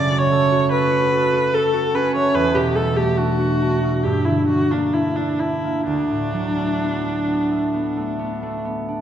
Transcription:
0.00 2.39 F#2 medium
0.00 2.40 C#3 medium
0.00 2.14 A3 medium
0.00 1.93 C#4 soft
0.00 0.20 D5 medium
0.11 0.51 F#4 medium
0.18 0.71 C#5 loud
0.31 0.71 A4 medium
0.52 0.90 F#4 medium
0.72 1.11 A4 soft
0.72 1.56 B4 loud
0.91 1.32 F#4 medium
1.12 1.52 A4 soft
1.33 1.72 F#4 medium
1.53 4.08 A4 soft
1.53 1.96 A4 medium
1.74 3.38 F#4 soft
1.94 2.39 C#4 medium
1.94 2.15 B4 medium
2.15 2.95 A3 soft
2.15 2.36 C#5 medium
2.35 4.08 E2 medium
2.35 2.56 B4 medium
2.55 4.08 B2 soft
2.55 2.77 G4 medium
2.75 4.48 G3 medium
2.75 2.98 A4 medium
2.96 3.82 A3 soft
2.96 3.19 G4 medium
3.17 3.60 D4 soft
3.17 4.05 F#4 medium
3.40 4.08 F#4 soft
3.62 4.93 D4 soft
3.83 4.09 A3 soft
4.04 5.91 G2 medium
4.04 4.27 G4 medium
4.25 5.91 D3 soft
4.25 4.48 E4 medium
4.48 5.91 G3 soft
4.48 4.73 F#4 medium
4.72 5.63 A#3 soft
4.72 4.95 D4 medium
4.93 5.40 D4 soft
4.93 5.18 E4 medium
5.16 5.41 D4 medium
5.16 5.91 E4 soft
5.40 7.03 D4 soft
5.40 5.87 E4 medium
5.64 5.91 A#3 soft
5.87 9.01 D2 soft
5.87 8.62 D4 medium
6.10 9.01 A2 soft
6.33 9.01 F#3 soft
6.57 7.50 A3 soft
6.81 7.26 B3 soft
7.04 8.87 D4 soft
7.28 7.73 B3 soft
7.51 7.96 A3 soft
7.74 8.18 B3 soft
7.97 8.41 A3 soft
8.19 8.64 B3 soft
8.42 9.01 A3 soft
8.65 9.01 B3 soft
8.88 9.01 D4 soft

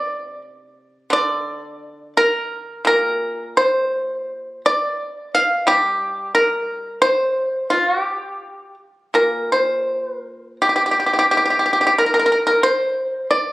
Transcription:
0.00 1.11 C3 medium
0.00 0.41 D5 medium
1.10 3.21 D3 medium
1.10 2.13 D5 medium
2.17 2.83 A#4 medium
2.85 4.99 A#2 medium
2.85 3.54 A#4 medium
3.57 4.61 C5 medium
4.66 5.31 D5 medium
5.35 5.66 F5 loud
5.67 7.70 G3 medium
5.67 6.31 G4 medium
6.35 6.98 A#4 medium
7.02 7.66 C5 loud
7.70 7.89 F4 medium
7.89 8.01 F#4 medium
8.01 8.74 G4 medium
9.14 11.28 A#2 soft
9.14 9.49 A#4 medium
9.52 10.06 C5 medium
10.06 10.18 B4 medium
10.18 10.56 A#4 medium
10.62 10.68 G4 medium
10.69 10.75 G4 soft
10.76 10.82 G4 soft
10.86 10.90 G4 soft
10.91 10.97 G4 soft
11.00 11.05 G4 soft
11.06 11.12 G4 soft
11.13 11.18 G4 soft
11.19 11.25 G4 medium
11.31 11.36 G4 medium
11.37 11.43 G4 medium
11.45 11.49 G4 medium
11.50 11.57 G4 soft
11.59 11.64 G4 soft
11.66 11.71 G4 soft
11.73 11.79 G4 soft
11.81 11.85 G4 soft
11.87 11.92 G4 medium
11.98 12.03 A#4 medium
12.06 12.11 A#4 medium
12.14 12.18 A#4 medium
12.19 12.24 A#4 medium
12.26 12.31 A#4 medium
12.32 12.37 A#4 medium
12.47 12.61 A#4 medium
12.63 13.26 C5 medium
13.31 13.53 D5 medium

